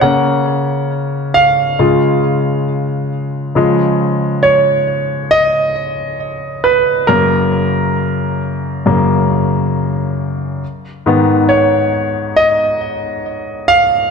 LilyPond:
<<
  \new Staff \with { instrumentName = "Grand piano" } { \time 4/4 \key fis \major \tempo 4 = 68 fis''4. eis''2 r8 | r4 cis''4 dis''4. b'8 | ais'4 r2. | r4 cis''4 dis''4. eis''8 | }
  \new Staff \with { instrumentName = "Grand piano" } { \clef bass \time 4/4 \key fis \major <cis ais cis'>8 r4. <cis gis eis'>8 r4. | <cis eis gis>4. r2 r8 | <fis, cis ais>2 <fis, cis ais>8 r4. | r8 <gis, dis b>4. r2 | }
>>